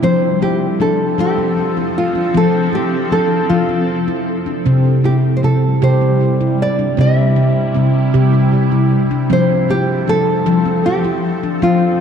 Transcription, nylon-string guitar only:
0.04 0.42 C5 medium
0.43 0.81 G4 medium
0.81 1.20 A4 medium
1.20 1.99 G4 medium
1.98 2.37 F4 medium
2.37 2.75 A4 medium
2.75 3.12 G4 medium
3.12 3.52 A4 medium
3.49 4.33 F4 medium
5.05 5.14 G4 medium
5.37 5.44 C5 medium
5.44 5.83 A4 medium
5.84 6.62 C5 medium
6.62 7.00 D5 medium
7.01 8.89 E5 medium
9.33 9.71 C5 medium
9.70 10.09 G4 medium
10.09 10.85 A4 medium
10.86 11.59 G4 medium
11.63 12.01 F4 medium

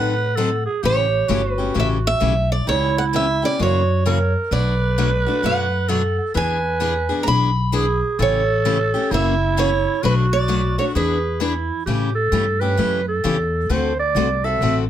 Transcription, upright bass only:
0.00 0.65 A2 medium
0.83 1.20 A1 medium
1.29 1.68 G1 medium
1.75 2.14 A1 medium
2.21 2.60 B1 medium
2.67 3.41 C#2 medium
3.59 4.33 F#2 medium
4.51 5.25 B1 medium
5.43 6.17 F#2 medium
6.35 7.09 E2 medium
7.27 8.01 B1 medium
8.19 8.92 A1 medium
9.11 9.85 F#1 medium
10.03 10.77 B1 medium
10.95 11.68 E2 medium
11.86 12.31 A2 medium
12.32 12.77 G2 medium
12.78 13.22 F#2 medium
13.24 13.68 E2 medium
13.69 14.14 D2 medium
14.15 14.60 C2 medium
14.61 14.90 A1 medium

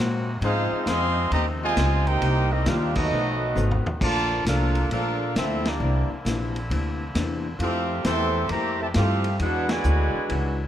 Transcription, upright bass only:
0.00 0.41 A#2 medium
0.41 0.69 G#2 medium
0.72 muted upright bass stroke soft
0.86 1.30 F2 medium
1.31 1.75 D#2 loud
1.76 2.20 C#2 loud
2.21 2.65 C2 loud
2.65 3.10 D#2 loud
3.11 3.55 B1 medium
3.56 3.84 G#1 medium
3.86 muted upright bass stroke soft
4.01 4.44 A#1 medium
4.45 4.89 C2 medium
4.90 5.34 A#1 medium
5.36 5.79 D2 loud
5.80 6.08 C2 loud
6.09 muted upright bass stroke soft
6.25 6.69 A#1 loud
6.70 7.14 D2 medium
7.15 7.59 E2 loud
7.59 8.03 F2 loud
8.04 8.48 E2 loud
8.50 8.93 F2 medium
8.95 9.39 G2 medium
9.39 9.83 E2 medium
9.84 10.12 D2 loud
10.14 muted upright bass stroke soft
10.30 10.68 C#2 medium

